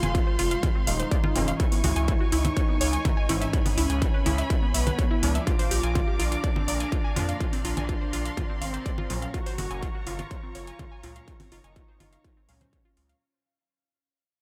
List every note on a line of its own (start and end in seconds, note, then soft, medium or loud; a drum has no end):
0.00 0.19 F1 medium
0.00 1.33 G#2 medium
0.00 1.33 F3 medium
0.00 5.43 G#3 medium
0.00 1.33 C4 loud
0.00 0.78 F4 loud
0.00 1.56 C5 medium
0.00 1.56 F5 medium
0.00 0.11 G#5 medium
0.00 1.56 C6 medium
0.00 closed hi-hat soft
0.00 low conga medium
0.15 0.23 F4 medium
0.15 kick loud
0.15 closed hi-hat soft
0.27 0.32 C5 medium
0.39 0.55 F1 medium
0.39 0.51 F4 loud
0.39 open hi-hat loud
0.51 0.56 F5 medium
0.51 closed hi-hat soft
0.63 0.71 F4 medium
0.63 kick loud
0.63 closed hi-hat soft
0.63 low conga medium
0.75 0.83 C4 medium
0.87 1.04 D#1 loud
0.87 1.61 D#4 loud
0.87 0.95 F5 medium
0.87 open hi-hat loud
1.00 1.11 C5 medium
1.00 closed hi-hat soft
1.11 1.16 D5 medium
1.11 kick loud
1.11 closed hi-hat soft
1.24 1.28 F4 loud
1.24 low conga loud
1.36 1.52 F1 loud
1.36 3.26 G#2 medium
1.36 3.26 E3 medium
1.36 3.26 C#4 loud
1.36 1.47 F4 medium
1.36 open hi-hat loud
1.48 1.53 F5 medium
1.48 closed hi-hat soft
1.60 2.34 E4 loud
1.60 1.65 E4 medium
1.60 5.43 C#5 medium
1.60 5.43 G#5 medium
1.60 3.51 C#6 medium
1.60 kick loud
1.60 closed hi-hat soft
1.72 1.80 B3 medium
1.72 open hi-hat medium
1.84 1.92 C#2 loud
1.84 1.92 F#4 medium
1.84 open hi-hat loud
1.84 low conga medium
1.96 2.12 C#2 loud
1.96 2.04 G#5 medium
1.96 closed hi-hat soft
2.08 2.16 E4 medium
2.08 kick loud
2.08 closed hi-hat soft
2.20 2.25 F#4 medium
2.32 2.49 C#2 loud
2.32 3.79 D#4 loud
2.32 2.40 E4 loud
2.32 open hi-hat loud
2.45 2.49 E4 medium
2.45 closed hi-hat soft
2.45 low conga medium
2.56 2.65 C#5 medium
2.56 kick loud
2.56 closed hi-hat soft
2.69 2.77 B3 medium
2.81 2.97 C#2 medium
2.81 2.89 C#5 loud
2.81 open hi-hat loud
2.93 3.01 G#5 medium
2.93 closed hi-hat soft
3.05 3.13 E4 medium
3.05 kick loud
3.05 closed hi-hat soft
3.05 low conga medium
3.17 3.25 G#5 loud
3.29 3.46 G#1 medium
3.29 5.20 G#2 medium
3.29 5.20 E3 medium
3.29 5.20 C#4 loud
3.29 3.37 E4 loud
3.29 open hi-hat loud
3.41 3.46 E5 medium
3.41 closed hi-hat soft
3.53 3.61 E4 medium
3.53 5.45 B5 medium
3.53 kick loud
3.53 closed hi-hat soft
3.66 3.73 B3 medium
3.66 open hi-hat medium
3.66 low conga medium
3.77 3.86 C#2 loud
3.77 4.65 C#4 loud
3.77 3.89 E4 loud
3.77 open hi-hat loud
3.90 4.06 C#2 medium
3.90 3.98 G#5 medium
3.90 closed hi-hat soft
4.02 4.10 E4 medium
4.02 kick loud
4.02 closed hi-hat soft
4.14 4.19 B4 medium
4.26 4.42 C#2 medium
4.26 4.38 E4 loud
4.26 open hi-hat loud
4.26 low conga medium
4.38 4.43 E5 medium
4.38 closed hi-hat soft
4.50 4.58 E4 medium
4.50 kick loud
4.50 closed hi-hat soft
4.62 4.70 B3 medium
4.74 4.91 B1 loud
4.74 5.37 B3 loud
4.74 4.82 E5 medium
4.74 open hi-hat loud
4.87 4.98 B4 medium
4.87 closed hi-hat soft
4.87 low conga medium
4.99 5.03 C#5 medium
4.99 kick loud
4.99 closed hi-hat soft
5.11 5.15 E4 loud
5.23 5.39 C#2 loud
5.23 7.14 A#2 medium
5.23 7.14 F3 medium
5.23 7.14 D4 loud
5.23 5.34 E4 medium
5.23 open hi-hat loud
5.35 5.40 E5 medium
5.35 closed hi-hat soft
5.47 5.52 F4 medium
5.47 6.21 F4 loud
5.47 13.17 A#4 medium
5.47 9.30 D5 medium
5.47 9.30 F5 medium
5.47 7.39 D6 medium
5.47 kick loud
5.47 closed hi-hat soft
5.59 5.71 C5 loud
5.59 open hi-hat medium
5.71 5.79 A#1 loud
5.71 5.79 G4 medium
5.71 open hi-hat loud
5.83 6.00 A#1 loud
5.83 5.91 G#5 medium
5.83 closed hi-hat soft
5.95 6.03 F4 medium
5.95 kick loud
5.95 closed hi-hat soft
5.95 low conga medium
6.08 6.12 G4 medium
6.19 6.36 A#1 loud
6.19 7.55 D4 loud
6.19 6.27 F4 loud
6.19 open hi-hat loud
6.32 6.36 F4 medium
6.32 closed hi-hat soft
6.44 6.52 D5 medium
6.44 kick loud
6.44 closed hi-hat soft
6.56 6.64 C4 medium
6.56 low conga medium
6.68 6.84 A#1 medium
6.68 6.76 D5 loud
6.68 open hi-hat loud
6.80 6.88 G#5 medium
6.80 closed hi-hat soft
6.92 7.00 F4 medium
6.92 kick loud
6.92 closed hi-hat soft
7.04 7.12 G#5 loud
7.16 7.33 F2 medium
7.16 9.07 A#2 medium
7.16 9.07 F3 medium
7.16 9.07 D4 loud
7.16 7.24 F4 loud
7.16 open hi-hat loud
7.16 low conga medium
7.29 7.33 F5 medium
7.29 closed hi-hat soft
7.40 7.48 F4 medium
7.40 9.32 C6 medium
7.40 kick loud
7.40 closed hi-hat soft
7.53 7.61 C4 medium
7.53 open hi-hat medium
7.65 7.73 A#1 medium
7.65 8.63 D4 loud
7.65 7.76 F4 loud
7.65 open hi-hat loud
7.77 7.93 A#1 medium
7.77 7.85 G#5 medium
7.77 closed hi-hat soft
7.77 low conga medium
7.89 7.97 F4 medium
7.89 kick loud
7.89 closed hi-hat soft
8.01 8.06 C5 medium
8.13 8.30 A#1 medium
8.13 8.25 F4 loud
8.13 open hi-hat loud
8.25 8.30 F5 medium
8.25 closed hi-hat soft
8.37 8.45 F4 medium
8.37 kick loud
8.37 closed hi-hat soft
8.37 low conga medium
8.50 8.57 C4 medium
8.61 8.78 G#1 loud
8.61 9.25 C4 loud
8.61 8.69 F5 medium
8.61 open hi-hat loud
8.74 8.85 C5 medium
8.74 closed hi-hat soft
8.86 8.90 D5 medium
8.86 kick loud
8.86 closed hi-hat soft
8.98 9.03 F4 loud
8.98 low conga medium
9.10 9.26 A#1 loud
9.10 11.01 A#2 medium
9.10 11.01 F#3 medium
9.10 11.01 C#4 loud
9.10 9.22 F4 medium
9.10 open hi-hat loud
9.22 9.27 F5 medium
9.22 closed hi-hat soft
9.34 9.39 F4 medium
9.34 10.08 F#4 loud
9.34 13.17 C#5 medium
9.34 13.17 A#5 medium
9.34 13.17 C#6 medium
9.34 kick loud
9.34 closed hi-hat soft
9.46 9.58 C5 loud
9.46 open hi-hat medium
9.58 9.67 F#1 loud
9.58 9.66 F#4 medium
9.58 open hi-hat loud
9.58 low conga loud
9.70 9.87 F#1 loud
9.70 9.78 G#5 medium
9.70 closed hi-hat soft
9.82 9.90 F4 medium
9.82 kick loud
9.82 closed hi-hat soft
9.95 9.99 F#4 medium
10.07 10.23 F#1 loud
10.07 11.42 F4 loud
10.07 10.15 F4 loud
10.07 open hi-hat loud
10.19 10.24 F4 medium
10.19 closed hi-hat soft
10.19 low conga loud
10.31 10.39 C#5 medium
10.31 kick loud
10.31 closed hi-hat soft
10.43 10.51 C4 medium
10.55 10.71 F#1 medium
10.55 10.63 C#5 loud
10.55 open hi-hat loud
10.67 10.75 G#5 medium
10.67 closed hi-hat soft
10.79 10.87 F4 medium
10.79 kick loud
10.79 closed hi-hat soft
10.79 low conga loud
10.92 10.99 G#5 loud
11.03 11.20 C#2 medium
11.03 12.47 A#2 medium
11.03 12.47 F#3 medium
11.03 12.47 C#4 loud
11.03 11.11 F4 loud
11.03 open hi-hat loud
11.16 11.20 F5 medium
11.16 closed hi-hat soft
11.28 11.36 F4 medium
11.28 kick loud
11.28 closed hi-hat soft
11.40 11.48 C4 medium
11.40 open hi-hat medium
11.40 low conga loud
11.52 11.60 F#1 loud
11.52 12.39 D#4 loud
11.52 11.64 F4 loud
11.52 open hi-hat loud
11.64 11.80 F#1 medium
11.64 11.72 G#5 medium
11.64 closed hi-hat soft
11.76 11.84 F4 medium
11.76 kick loud
11.76 closed hi-hat soft
11.88 11.93 C5 medium
12.00 12.17 F#1 medium
12.00 12.12 F4 loud
12.00 open hi-hat loud
12.00 low conga loud
12.13 12.17 F5 medium
12.13 closed hi-hat soft
12.24 12.32 F4 medium
12.24 kick loud
12.24 closed hi-hat soft
12.37 12.44 C4 medium
12.49 12.65 C#2 loud
12.49 13.20 A#2 loud
12.49 13.20 F#3 medium
12.49 13.12 C#4 loud
12.49 13.20 C#4 loud
12.49 12.57 F5 medium
12.49 open hi-hat loud
12.61 12.72 C5 medium
12.61 closed hi-hat soft
12.61 low conga loud
12.73 12.78 C#5 medium
12.73 kick loud
12.73 closed hi-hat soft
12.85 12.90 F4 loud
12.97 13.13 C#2 medium
12.97 13.09 F4 medium
12.97 open hi-hat loud
13.09 13.14 F5 medium
13.09 closed hi-hat soft